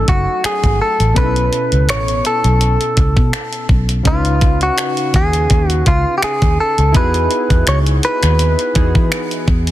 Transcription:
0.00 1.11 F#3 medium
0.00 1.14 A3 medium
0.00 1.12 C#4 medium
0.00 1.12 D#4 medium
0.00 1.13 G#5 medium
0.08 0.25 F#1 loud
0.08 0.45 F#4 medium
0.08 kick loud
0.08 closed hi-hat medium
0.44 0.81 G#4 medium
0.44 finger snap loud
0.44 muted fingered electric bass stroke soft
0.44 closed hi-hat medium
0.64 0.78 G#1 medium
0.64 kick medium
0.64 closed hi-hat soft
0.82 1.17 A4 medium
1.00 1.14 A1 medium
1.00 closed hi-hat soft
1.14 1.48 B1 loud
1.14 4.00 B2 medium
1.14 4.01 B3 medium
1.14 4.01 C#4 medium
1.14 1.24 D#4 soft
1.14 1.90 B4 medium
1.14 kick loud
1.14 closed hi-hat medium
1.19 4.03 A4 medium
1.24 4.05 E4 medium
1.36 closed hi-hat soft
1.53 closed hi-hat medium
1.72 1.89 C#2 medium
1.72 closed hi-hat soft
1.89 2.21 A1 medium
1.89 2.26 C#5 loud
1.89 finger snap loud
1.89 closed hi-hat medium
2.08 closed hi-hat soft
2.25 3.66 A4 medium
2.25 closed hi-hat medium
2.44 2.76 B1 medium
2.44 closed hi-hat soft
2.61 closed hi-hat medium
2.81 closed hi-hat soft
2.97 3.14 C#2 medium
2.97 kick medium
2.97 closed hi-hat medium
3.17 3.31 B2 medium
3.17 kick medium
3.33 finger snap loud
3.33 closed hi-hat medium
3.53 closed hi-hat soft
3.69 4.01 B1 medium
3.69 kick loud
3.89 closed hi-hat medium
4.03 4.69 C#2 loud
4.03 6.90 C#3 medium
4.03 6.90 C#4 medium
4.03 6.91 D#4 medium
4.03 6.91 F5 medium
4.03 kick loud
4.03 closed hi-hat medium
4.07 4.62 F4 medium
4.07 4.14 A#4 medium
4.14 6.95 B4 medium
4.25 closed hi-hat soft
4.41 kick loud
4.41 closed hi-hat medium
4.61 5.15 F#4 medium
4.61 closed hi-hat soft
4.78 finger snap loud
4.78 closed hi-hat medium
4.97 closed hi-hat soft
5.14 5.46 D#2 medium
5.14 5.70 G#4 medium
5.14 kick loud
5.14 closed hi-hat medium
5.33 closed hi-hat medium
5.50 5.82 D#2 medium
5.50 kick medium
5.50 closed hi-hat medium
5.70 5.87 F#4 medium
5.70 closed hi-hat soft
5.86 6.04 C#2 medium
5.86 6.15 F4 medium
5.86 kick medium
5.86 closed hi-hat medium
6.18 6.23 G4 medium
6.22 6.60 G#4 medium
6.22 finger snap loud
6.22 muted fingered electric bass stroke soft
6.22 closed hi-hat medium
6.42 6.57 D#2 medium
6.42 kick medium
6.42 closed hi-hat soft
6.60 6.96 A4 medium
6.78 6.95 C#2 medium
6.78 closed hi-hat soft
6.92 7.27 E2 loud
6.92 8.71 B3 medium
6.92 8.72 D#4 medium
6.92 8.71 E4 medium
6.92 8.72 F#4 medium
6.92 kick loud
6.92 closed hi-hat medium
6.97 8.73 G#4 medium
6.97 7.68 B4 loud
7.14 closed hi-hat soft
7.31 closed hi-hat medium
7.50 7.65 E2 medium
7.50 kick medium
7.50 closed hi-hat soft
7.67 7.99 C#2 medium
7.67 7.78 C#5 loud
7.67 finger snap loud
7.67 closed hi-hat medium
7.86 closed hi-hat soft
8.03 9.44 B4 loud
8.03 closed hi-hat medium
8.23 8.55 D#2 medium
8.23 finger snap medium
8.23 closed hi-hat soft
8.39 closed hi-hat medium
8.59 closed hi-hat soft
8.74 8.93 E2 medium
8.74 9.71 E3 medium
8.74 9.71 B3 soft
8.74 9.71 D#4 soft
8.74 9.71 F#4 soft
8.74 9.71 G#4 medium
8.74 kick medium
8.74 closed hi-hat medium
8.95 9.10 E3 medium
8.95 kick loud
9.12 finger snap loud
9.12 closed hi-hat medium
9.31 closed hi-hat soft
9.48 9.71 E2 medium
9.48 kick medium
9.67 closed hi-hat medium

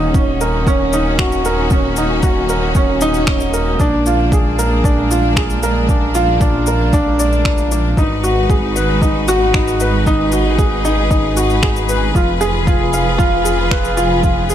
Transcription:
0.00 3.77 D#1 medium
0.00 3.76 D#3 medium
0.00 7.93 A#3 medium
0.00 3.76 C#4 medium
0.00 0.93 D#4 medium
0.00 3.76 F#4 medium
0.14 0.40 C#4 medium
0.14 kick loud
0.14 shaker soft
0.41 0.56 A#4 medium
0.41 shaker medium
0.67 0.92 C#4 loud
0.67 kick loud
0.67 shaker soft
0.93 1.18 D#4 medium
0.93 shaker medium
1.19 1.34 F#4 medium
1.19 finger snap medium
1.19 kick loud
1.32 shaker soft
1.45 1.70 A#4 medium
1.45 shaker medium
1.70 1.86 C#4 medium
1.70 kick loud
1.70 shaker soft
1.96 2.22 D#4 medium
1.96 shaker medium
2.23 2.48 F#4 medium
2.23 kick loud
2.23 shaker soft
2.49 2.64 A#4 medium
2.49 shaker medium
2.75 2.91 C#4 medium
2.75 kick loud
2.75 shaker soft
3.01 3.17 D#4 loud
3.01 shaker medium
3.14 shaker soft
3.27 3.53 C#4 medium
3.27 finger snap medium
3.27 kick loud
3.40 shaker soft
3.54 3.69 A#4 medium
3.54 shaker medium
3.80 7.95 A#1 medium
3.80 7.93 G#3 medium
3.80 7.93 D4 medium
3.80 4.05 D4 loud
3.80 kick loud
3.80 shaker soft
4.06 4.31 F4 medium
4.06 shaker medium
4.32 4.48 G#4 medium
4.32 kick loud
4.32 shaker soft
4.59 4.83 A#4 medium
4.59 shaker medium
4.84 4.99 D4 medium
4.84 kick loud
4.84 shaker soft
5.11 5.35 F4 medium
5.11 shaker medium
5.36 5.62 G#4 medium
5.36 finger snap medium
5.36 kick loud
5.50 shaker soft
5.63 5.78 A#4 medium
5.63 shaker medium
5.89 6.04 D4 medium
5.89 kick loud
5.89 shaker soft
6.15 6.30 F4 loud
6.15 shaker medium
6.41 6.66 D4 medium
6.41 kick loud
6.41 shaker soft
6.66 6.82 A#4 medium
6.66 shaker medium
6.93 7.18 D4 loud
6.93 kick loud
6.93 shaker soft
7.19 7.44 D5 medium
7.19 shaker medium
7.32 shaker soft
7.45 7.70 D4 medium
7.45 finger snap medium
7.45 kick loud
7.58 shaker soft
7.72 7.96 D4 medium
7.72 shaker medium
7.97 12.12 G#1 medium
7.97 12.11 G#3 medium
7.97 12.11 D#4 medium
7.97 8.13 D#4 medium
7.97 10.04 F#4 medium
7.97 14.55 B4 medium
7.97 kick loud
7.97 shaker soft
8.24 8.48 F#4 medium
8.24 shaker medium
8.49 8.74 G#4 medium
8.49 kick loud
8.49 shaker soft
8.76 8.91 B4 medium
8.76 shaker medium
9.02 9.17 D#4 medium
9.02 kick loud
9.02 shaker soft
9.28 9.43 F#4 loud
9.28 shaker medium
9.54 9.79 D#4 medium
9.54 finger snap medium
9.54 kick loud
9.68 shaker soft
9.80 9.95 B4 medium
9.80 shaker medium
10.06 10.31 D#4 loud
10.06 12.13 G#4 medium
10.06 kick loud
10.06 shaker soft
10.32 10.57 F#4 medium
10.32 shaker medium
10.58 10.73 G#4 medium
10.58 kick loud
10.58 shaker soft
10.85 10.99 D#4 medium
10.85 shaker medium
11.11 11.25 D#4 medium
11.11 kick loud
11.11 shaker soft
11.37 11.61 F#4 medium
11.37 shaker medium
11.50 shaker soft
11.63 11.87 G#4 medium
11.63 finger snap medium
11.63 kick loud
11.76 shaker soft
11.89 12.04 B4 medium
11.89 shaker medium
12.15 14.55 F1 medium
12.15 14.55 F3 medium
12.15 14.55 F4 medium
12.15 12.30 F4 medium
12.15 14.55 G#4 medium
12.15 kick loud
12.15 shaker soft
12.41 12.56 G#4 loud
12.41 shaker medium
12.67 12.92 F4 medium
12.67 kick loud
12.67 shaker soft
12.93 13.08 F5 medium
12.93 shaker medium
13.18 13.44 F4 loud
13.18 kick loud
13.18 shaker soft
13.45 13.70 G#4 medium
13.45 shaker medium
13.71 13.86 B4 medium
13.71 finger snap medium
13.71 kick loud
13.85 shaker soft
13.97 14.12 F4 loud
13.97 shaker medium
14.23 14.38 F4 medium
14.23 kick loud
14.23 shaker soft
14.50 14.55 G#4 medium
14.50 shaker medium

